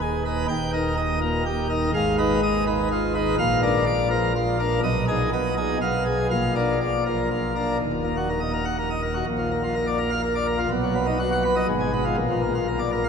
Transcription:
Already playing: D#1 D#2
0.01 G#4
0.25 D#4 B4
0.48 D#1 D#2 G5
0.73 D#4 A#4
0.97 D#5
1.21 A#2 A#4
1.46 G4
1.69 D#4 A#4
1.94 G#1 G#2 F5
2.18 D#4 B4
2.43 D#5
2.67 D#3 B4
2.91 F4
3.15 D#4 B4
3.39 A#1 A#2 F5
3.63 D4 A#4
3.86 D5
4.10 F3 A#4
4.36 F4
4.59 D4 A#4
4.83 B1 B2 D#5
5.08 D#4 G#4
5.33 B3 D#5
5.57 D#4 G#4
5.82 B1 B2 F5
6.05 G#4
6.31 A#1 A#2 F5
6.55 D4 A#4
6.81 D5
7.06 F3 A#4
7.30 F4
7.55 D4 A#4
7.80 D#1 D#2
7.93 A#2
8.04 A#3
8.17 F#4
8.29 A#4
8.40 D#5
8.53 A#4
8.65 F#5
8.78 A#4
8.90 D#5
9.02 A#4
9.14 F#4
9.26 A#1 A#2
9.38 F3
9.51 A#3
9.63 F4
9.74 A#4
9.87 D5
9.98 A#4
10.10 F5
10.23 A#4
10.35 D5
10.46 A#4
10.58 F4
10.71 B1 B2
10.83 F#3
10.95 B3
11.07 D#4
11.19 F#4
11.32 F#5
11.44 B4
11.56 D#5
11.68 G#1 G#2
11.80 G#3
11.93 B3
12.05 F4
12.17 A#1 A#2
12.30 F3
12.42 A#3
12.55 F4
12.67 A#4
12.79 D5
12.92 A#4
13.04 F5

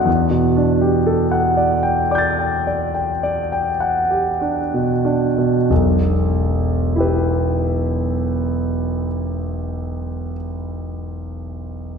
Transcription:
0.05 E2
0.31 B2
0.57 D4
0.81 G4
1.06 A4
1.31 F#5
1.57 D5
1.83 G5
2.11 D5 D6 G6
2.18 A6
2.39 G5
2.67 D5
2.94 G5
3.23 D5
3.52 G5
3.80 F#5
4.10 G4
4.41 D4
4.74 B2
5.05 D4
5.38 B2
5.70 E1 B1
6.96 E4 G4
7.00 B4

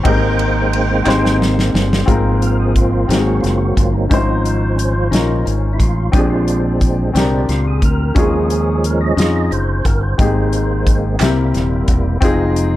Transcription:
0.04 G#1 G#2 G#3 A#3 C4 D#4 G4 G#4 C5 G5, kick, ride bell
0.08 A#4
0.39 ride bell
0.73 ride bell
1.04 G#1 C4 D#4 G4 G#4, clap
1.08 C5, snare
1.25 snare
1.42 snare
1.59 snare
1.74 G1 G3 A#3 C4, snare
1.93 snare
2.06 G#1 G#2 F3 A#3 C4 F4 G#4 A#4, kick, closed hi-hat
2.10 C4
2.42 A#4, closed hi-hat
2.60 G#4
2.76 F4, kick, closed hi-hat
2.92 F4
3.08 G#1 F#3 G#3 A#3 C4 D#4 F#4, closed hi-hat
3.12 G4, snare
3.18 G#4
3.25 F#4
3.41 F#1 F4, closed hi-hat
3.45 snare
3.58 F#4
3.75 G1 F4, kick, closed hi-hat
3.92 D#4
4.09 G#2 F3 C4 C#4 D#4 E4 C5, kick, closed hi-hat
4.13 C5
4.18 F4
4.42 D#4, closed hi-hat
4.76 C#4, closed hi-hat
4.93 F4
5.11 A#1 C#4 D#4 F4 A#4, snare, closed hi-hat
5.45 G#1 C#4, closed hi-hat
5.73 E4
5.78 A1 F4, kick, closed hi-hat
6.12 A#1 A#2 F3 G#3 C4 D4 G4 G#4, kick, closed hi-hat
6.16 G#4
6.30 F4
6.48 closed hi-hat
6.81 kick, closed hi-hat
7.13 C2 G3 G#3 C4 D4 G4 A#4, snare, closed hi-hat
7.49 C#2 F4, snare, closed hi-hat
7.67 G#4
7.82 D2 A#4, kick, closed hi-hat
8.15 D#2 D#3 F3 G#3 C#4 D#4 F4 G#4, kick, closed hi-hat
8.50 G#4, closed hi-hat
8.84 A#4, closed hi-hat
9.01 D#5
9.16 F2 C#4 D#4 F4, snare, closed hi-hat
9.20 G#4
9.51 F#1 C5, closed hi-hat
9.85 G1 A#4, kick, closed hi-hat
10.01 C5
10.18 G#1 G#2 G#3 A#3 C4 D#4 G4 G#4, kick, closed hi-hat
10.53 closed hi-hat
10.87 kick, closed hi-hat
11.19 C2 C3 G3 A#3 C4 E4 G4 A#4, snare, clap, closed hi-hat
11.54 D#1, snare, closed hi-hat
11.88 E1, kick, closed hi-hat
12.21 F1 F3 G#3 C4 D#4 F4 G#4, kick, closed hi-hat
12.56 closed hi-hat

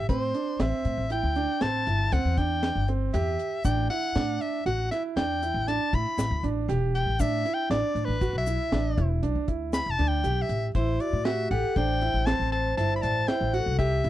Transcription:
0.09 A2 C4 C5, kick, closed hi-hat
0.34 D4, closed hi-hat
0.59 A1 C4 E5, snare, closed hi-hat
0.85 A2, closed hi-hat
0.97 A1
1.10 E4 G5, closed hi-hat
1.23 D2
1.36 D4, closed hi-hat
1.61 A1 C4 A5, snare, closed hi-hat
1.87 G1 E4, closed hi-hat
2.12 D2 C4 F#5, closed hi-hat
2.25 E2
2.38 D4 G5, kick, closed hi-hat
2.63 snare, closed hi-hat
2.75 G1
2.88 C4, closed hi-hat
3.13 E2 G4 E5, snare, closed hi-hat
3.39 closed hi-hat
3.65 A1 D4 G5, kick, closed hi-hat, shaker
3.90 E4 F#5, closed hi-hat
4.15 A2 D4, snare, closed hi-hat, shaker
4.41 E5, closed hi-hat
4.66 A1 F#4 F#5, closed hi-hat
4.91 E4 E5, snare, closed hi-hat
5.16 E2 D4 G5, snare, closed hi-hat
5.42 E4, closed hi-hat, shaker
5.54 A1
5.68 D4 A5, snare, closed hi-hat
5.93 A2 E4 B5, kick, closed hi-hat
6.18 A1, snare, closed hi-hat, shaker
6.31 D2
6.43 A1 D4, closed hi-hat
6.68 E1 G4, snare, closed hi-hat
6.95 G5, closed hi-hat
7.06 A1
7.20 A2 D4 E5, kick, closed hi-hat, shaker
7.45 E4, closed hi-hat
7.54 G5
7.70 A1 D4 D5, snare, closed hi-hat
7.95 A2, closed hi-hat
8.05 A1 B4
8.21 F#4, kick, closed hi-hat, shaker
8.33 B1
8.38 E5
8.46 E4, closed hi-hat, shaker
8.72 A1 D4, snare, closed hi-hat
8.97 E1 E4, kick, closed hi-hat
9.22 B1 D4, closed hi-hat
9.35 D2
9.48 E4, kick, closed hi-hat
9.73 B5, snare, closed hi-hat, shaker
9.86 E1
9.90 A5
9.98 D2 D4, closed hi-hat
10.08 G5
10.24 B1 G4, closed hi-hat, shaker
10.42 E5
10.49 A1, closed hi-hat
10.75 A1 E4 C5, kick, closed hi-hat
11.00 F#4 D5, closed hi-hat
11.13 A2
11.25 F#4 G4 E5, snare, closed hi-hat
11.51 A1 G4 A4 F#5, closed hi-hat
11.76 A1 D4 C5 G5, kick, snare, closed hi-hat
12.02 E4, closed hi-hat
12.14 A1
12.26 C4 C5 A5, snare, closed hi-hat
12.39 A1
12.52 C5 A5, closed hi-hat
12.77 G1 E4 C5 A5, snare, closed hi-hat
12.96 D5 B5
13.02 A1 C5 A5, closed hi-hat
13.27 E4 C5 G5, snare, closed hi-hat
13.41 A1
13.53 F#4 A4 F#5, closed hi-hat
13.66 C2
13.79 G4 E5, kick, closed hi-hat
14.04 A2 E4, closed hi-hat

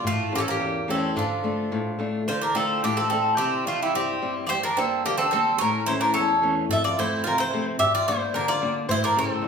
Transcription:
0.04 A2 A3 F4, darbuka dum
0.32 E3 A#3 C#4 G4 A4, darbuka tek
0.38 C#4 A4
0.48 A#3 G4
0.60 E2, darbuka tek
0.75 darbuka tek
0.88 E3 A3 C4 C#4 A4, darbuka tek
1.16 D3 F3 D4, darbuka dum
1.44 A3 D4 F4, darbuka tek
1.72 A2, darbuka tek
1.99 A3 D4 F4, darbuka tek
2.13 darbuka tek
2.28 D3 F4 C5
2.42 D4 A#4
2.55 A3 C4 D4 F4 A4
2.84 A2 D4 G4
2.97 C4 A4
3.10 A3 C4 D4 F4 A4
3.37 C3 C4 G4
3.65 G3 A3 C4 E4 F4
3.82 G3 E4
3.94 G2 C4 G4
4.22 G3 C4 E4
4.47 G2 F4 G4 C5 D5
4.63 D4 A#4
4.77 G3 A#3 C4 D4 A4
5.05 D3 A#3 G4
5.18 C4 A4
5.31 G3 A#3 C4 D4 A4
5.58 A2 C#4 A#4
5.86 E3 A3 C#4 E4 C5
6.01 D4 A#4
6.14 E2 C#4 A4
6.42 E3 A3 C#4
6.69 F2 A4 E5, darbuka dum
6.84 F4 D5
6.97 F3 A3 C4 E4 C5, darbuka tek
7.24 C3 F4 A#4, darbuka tek
7.38 E4 C5
7.51 F3 A3 C4, darbuka tek
7.79 G2 G4 E5, darbuka dum
7.95 F4 D5
8.06 G3 A#3 D4 E4 C5, darbuka tek
8.34 D3 D4 A#4, darbuka tek
8.48 F4 D5
8.62 G3 A#3 D4, darbuka tek
8.76 darbuka tek
8.88 A2 E4 C5, darbuka dum
9.04 D4 A#4
9.16 C#3 G3 A3 C4 A4, darbuka tek
9.41 E2, darbuka tek

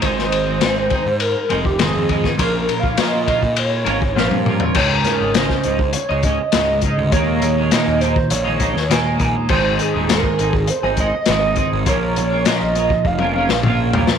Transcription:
0.01 G#1 G#2 D#3 G#3 C4 D#4 G#4 C5, kick, ride
0.19 snare
0.32 ride
0.46 G#3 C4 D#4 G#4
0.61 G#1 G#2 D#3 G#3 C4 D#4 G#4, snare, ride
0.75 G#3 C4 D#4 G#4
0.90 G#3 C4 D#4 G#4, kick, ride
1.05 G#2, muted clean electric guitar stroke
1.20 A#4, ride
1.49 F1 G#3 C4 D#4 G#4, ride
1.65 G4, muted clean electric guitar stroke, kick
1.79 G#2 D#3 G#3 C4 D#4 G#4, snare, ride
1.96 F2
2.09 G#3 C4 D#4 G#4, kick, ride
2.23 G#3 C4 D#4 G#4, kick, snare
2.38 A#1 A#2 F3 A#3 C#4 F4 A#4, kick, ride
2.69 ride
2.79 F4 A#4 F5
2.83 A#3 C#4, kick
2.97 A#2 F3 A#3 C#4 F4 A#4 D#5, snare, ride
3.12 A#3 C#4 F4 A#4
3.26 A#3 C#4 F4 A#4, kick, ride
3.42 A#2, muted clean electric guitar stroke, kick
3.56 C#5, ride
3.85 G#1 A#3 C#4 F4 A#4, ride
4.01 muted clean electric guitar stroke, kick
4.16 A#2 F3 A#3 C#4 F4 A#4 C5, snare
4.31 G2, high tom
4.45 A#3 C#4 F4 A#4, mid tom
4.60 A#3 C#4 F4 A#4, floor tom
4.75 C#2 G#2 C#3 G#3 D#4 C#5, kick, crash
5.04 A#4, snare, closed hi-hat
5.21 G#1 C#3 G#3 D#4
5.34 C#2 G#2 C#3 G#3 D#4 C5, snare, closed hi-hat
5.50 kick, snare
5.63 C#2 G#2 C#3 G#3, closed hi-hat
5.68 D#4
5.79 muted clean electric guitar stroke, kick
5.93 C#5, closed hi-hat
6.09 C#2 C#3 G#3 D#4
6.23 G#2 C#3 G#3 D#5, kick, closed hi-hat
6.27 D#4
6.40 muted clean electric guitar stroke
6.52 C#2 G#2 C#3 G#3, snare, closed hi-hat
6.56 D#4
6.82 G#2 C#3 G#3, kick, closed hi-hat
6.86 D#4
6.98 D2
7.12 D#2 A#2 D#3 G#3 A#3 D#4 C#5, kick, closed hi-hat
7.42 D#2 C#5, closed hi-hat
7.57 D#3 G#3 A#3 D#4
7.71 D#2 A#2 D#3 G#3 A#3 D#4 D#5, snare, closed hi-hat
7.88 D#2
8.01 D#3 G#3 A#3 D#4 C5, closed hi-hat
8.16 muted clean electric guitar stroke, kick
8.30 A#1 C#5, closed hi-hat
8.45 D#3 G#3 A#3 D#4
8.59 D#3 G#3 A#3 D#4, kick, closed hi-hat
8.75 D#2, muted clean electric guitar stroke, snare
8.89 D#2 A#2 D#3 G#3 A#3 D#4 G#5, snare, closed hi-hat
9.18 A#1 D#3 G#3 A#3 D#4, kick, closed hi-hat
9.48 G#1 G#2 D#3 G#3 C4 D#4 G#4 C5, kick, crash
9.79 G#4, closed hi-hat
9.94 D#1 G#3 C4 D#4 G#4
10.09 G#2 D#3 G#3 C4 D#4 G#4 A#4, snare, closed hi-hat
10.23 kick
10.39 G#1 G#3 C4 D#4 G#4, closed hi-hat
10.53 G#4, muted clean electric guitar stroke, kick
10.67 C5, closed hi-hat
10.83 G#1 G#3 C4 D#4 G#4
10.97 G#3 C4 D#4 D#5, kick, closed hi-hat
11.01 G#4
11.14 muted clean electric guitar stroke
11.26 G#1 G#2 D#3 G#3 C4 D#4, snare, closed hi-hat
11.30 G#4
11.56 G#3 C4 D#4, kick, closed hi-hat
11.60 G#4
11.73 G#1
11.86 A#1 A#2 F3 A#3 C#4 F4 A#4 C#5, kick, closed hi-hat
12.16 A#1 C#5, closed hi-hat
12.31 A#3 C#4 F4 A#4
12.45 A#2 F3 A#3 C#4 F4 A#4 D#5, snare, closed hi-hat
12.62 A#1
12.75 A#3 C#4 F4 A#4, closed hi-hat
12.90 muted clean electric guitar stroke, kick
13.05 F1 F5, kick
13.19 C#4 F4 A#4, high tom
13.23 A#3
13.36 A#3 C#4 F4 A#4
13.49 A#1, muted clean electric guitar stroke, snare
13.63 A#2 F3 A#3 C#4 F4, mid tom
13.68 A#4
13.93 C2 A#3 C#4 F4 A#4, floor tom
14.07 snare

